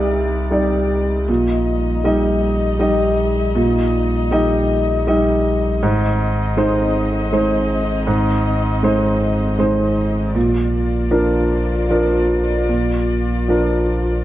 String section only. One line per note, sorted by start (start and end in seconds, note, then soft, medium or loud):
0.00 1.24 G3 soft
0.00 1.24 D#4 soft
0.00 1.24 D5 soft
1.27 5.78 G3 soft
1.27 5.77 D#4 medium
1.27 5.81 D#5 soft
5.82 10.35 C4 soft
5.82 10.31 D#4 medium
5.82 10.31 D#5 medium
10.34 14.24 A#3 soft
10.34 14.24 F4 soft
10.34 14.24 D5 soft